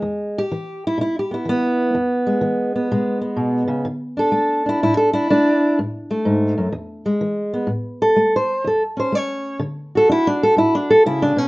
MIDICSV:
0, 0, Header, 1, 2, 480
1, 0, Start_track
1, 0, Key_signature, 3, "major"
1, 0, Tempo, 478469
1, 48, Time_signature, 4, 2, 24, 8
1, 11516, End_track
2, 0, Start_track
2, 0, Title_t, "Steel-string acoustic guitar"
2, 0, Program_c, 0, 25
2, 0, Note_on_c, 0, 56, 37
2, 23, Note_on_c, 0, 40, 60
2, 385, Note_on_c, 0, 67, 92
2, 415, Note_off_c, 0, 56, 0
2, 481, Note_off_c, 0, 40, 0
2, 517, Note_on_c, 0, 52, 62
2, 854, Note_off_c, 0, 67, 0
2, 872, Note_on_c, 0, 64, 84
2, 967, Note_off_c, 0, 52, 0
2, 980, Note_on_c, 0, 47, 58
2, 1003, Note_off_c, 0, 64, 0
2, 1015, Note_on_c, 0, 64, 75
2, 1169, Note_off_c, 0, 64, 0
2, 1195, Note_on_c, 0, 67, 71
2, 1316, Note_on_c, 0, 59, 39
2, 1339, Note_off_c, 0, 67, 0
2, 1343, Note_on_c, 0, 64, 62
2, 1438, Note_off_c, 0, 47, 0
2, 1457, Note_on_c, 0, 52, 57
2, 1480, Note_off_c, 0, 59, 0
2, 1496, Note_on_c, 0, 59, 88
2, 1915, Note_off_c, 0, 52, 0
2, 1952, Note_on_c, 0, 40, 66
2, 1971, Note_off_c, 0, 64, 0
2, 2273, Note_on_c, 0, 56, 41
2, 2402, Note_off_c, 0, 40, 0
2, 2420, Note_on_c, 0, 52, 64
2, 2753, Note_off_c, 0, 59, 0
2, 2765, Note_on_c, 0, 59, 45
2, 2875, Note_off_c, 0, 52, 0
2, 2911, Note_off_c, 0, 56, 0
2, 2925, Note_on_c, 0, 47, 61
2, 2926, Note_on_c, 0, 56, 46
2, 3213, Note_off_c, 0, 59, 0
2, 3225, Note_on_c, 0, 59, 42
2, 3363, Note_off_c, 0, 47, 0
2, 3375, Note_on_c, 0, 47, 52
2, 3683, Note_off_c, 0, 47, 0
2, 3687, Note_on_c, 0, 49, 55
2, 3858, Note_off_c, 0, 56, 0
2, 3861, Note_on_c, 0, 50, 68
2, 3863, Note_off_c, 0, 49, 0
2, 3871, Note_off_c, 0, 59, 0
2, 4183, Note_on_c, 0, 62, 46
2, 4205, Note_on_c, 0, 69, 87
2, 4314, Note_off_c, 0, 50, 0
2, 4332, Note_on_c, 0, 57, 62
2, 4662, Note_off_c, 0, 62, 0
2, 4674, Note_on_c, 0, 62, 40
2, 4679, Note_off_c, 0, 69, 0
2, 4703, Note_on_c, 0, 64, 77
2, 4789, Note_off_c, 0, 57, 0
2, 4836, Note_off_c, 0, 64, 0
2, 4844, Note_on_c, 0, 45, 66
2, 4848, Note_on_c, 0, 64, 80
2, 4984, Note_off_c, 0, 64, 0
2, 4988, Note_on_c, 0, 69, 76
2, 5146, Note_off_c, 0, 69, 0
2, 5148, Note_off_c, 0, 62, 0
2, 5150, Note_on_c, 0, 64, 81
2, 5160, Note_on_c, 0, 62, 46
2, 5285, Note_off_c, 0, 45, 0
2, 5309, Note_off_c, 0, 62, 0
2, 5321, Note_on_c, 0, 62, 83
2, 5327, Note_on_c, 0, 57, 59
2, 5767, Note_off_c, 0, 57, 0
2, 5791, Note_off_c, 0, 64, 0
2, 5797, Note_off_c, 0, 62, 0
2, 5809, Note_on_c, 0, 45, 63
2, 6126, Note_on_c, 0, 57, 47
2, 6248, Note_off_c, 0, 45, 0
2, 6272, Note_on_c, 0, 44, 62
2, 6589, Note_off_c, 0, 44, 0
2, 6598, Note_on_c, 0, 42, 54
2, 6741, Note_off_c, 0, 57, 0
2, 6743, Note_off_c, 0, 42, 0
2, 6747, Note_on_c, 0, 40, 71
2, 7079, Note_on_c, 0, 56, 50
2, 7198, Note_off_c, 0, 40, 0
2, 7231, Note_on_c, 0, 52, 56
2, 7559, Note_on_c, 0, 59, 47
2, 7680, Note_off_c, 0, 52, 0
2, 7693, Note_on_c, 0, 45, 64
2, 7699, Note_off_c, 0, 56, 0
2, 7719, Note_off_c, 0, 59, 0
2, 8045, Note_on_c, 0, 69, 84
2, 8152, Note_off_c, 0, 45, 0
2, 8190, Note_on_c, 0, 57, 61
2, 8361, Note_off_c, 0, 69, 0
2, 8387, Note_on_c, 0, 72, 77
2, 8642, Note_off_c, 0, 57, 0
2, 8672, Note_on_c, 0, 40, 63
2, 8692, Note_off_c, 0, 72, 0
2, 8701, Note_on_c, 0, 69, 72
2, 8849, Note_off_c, 0, 69, 0
2, 8997, Note_on_c, 0, 61, 45
2, 9024, Note_on_c, 0, 72, 70
2, 9124, Note_off_c, 0, 40, 0
2, 9152, Note_on_c, 0, 57, 59
2, 9181, Note_off_c, 0, 72, 0
2, 9181, Note_on_c, 0, 73, 98
2, 9605, Note_off_c, 0, 57, 0
2, 9622, Note_off_c, 0, 61, 0
2, 9626, Note_on_c, 0, 50, 69
2, 9652, Note_off_c, 0, 73, 0
2, 9985, Note_on_c, 0, 66, 45
2, 10004, Note_on_c, 0, 69, 88
2, 10083, Note_off_c, 0, 50, 0
2, 10126, Note_on_c, 0, 62, 63
2, 10144, Note_off_c, 0, 69, 0
2, 10149, Note_on_c, 0, 64, 93
2, 10285, Note_off_c, 0, 62, 0
2, 10297, Note_off_c, 0, 64, 0
2, 10305, Note_on_c, 0, 62, 92
2, 10455, Note_off_c, 0, 62, 0
2, 10466, Note_on_c, 0, 69, 96
2, 10600, Note_on_c, 0, 45, 56
2, 10612, Note_off_c, 0, 69, 0
2, 10616, Note_on_c, 0, 64, 77
2, 10772, Note_off_c, 0, 64, 0
2, 10783, Note_on_c, 0, 62, 85
2, 10936, Note_off_c, 0, 62, 0
2, 10940, Note_on_c, 0, 69, 90
2, 11052, Note_off_c, 0, 45, 0
2, 11094, Note_off_c, 0, 69, 0
2, 11094, Note_on_c, 0, 49, 61
2, 11100, Note_on_c, 0, 64, 89
2, 11255, Note_off_c, 0, 64, 0
2, 11259, Note_on_c, 0, 62, 76
2, 11395, Note_off_c, 0, 49, 0
2, 11399, Note_on_c, 0, 47, 52
2, 11419, Note_off_c, 0, 62, 0
2, 11419, Note_on_c, 0, 61, 88
2, 11516, Note_off_c, 0, 47, 0
2, 11516, Note_off_c, 0, 61, 0
2, 11516, Note_off_c, 0, 66, 0
2, 11516, End_track
0, 0, End_of_file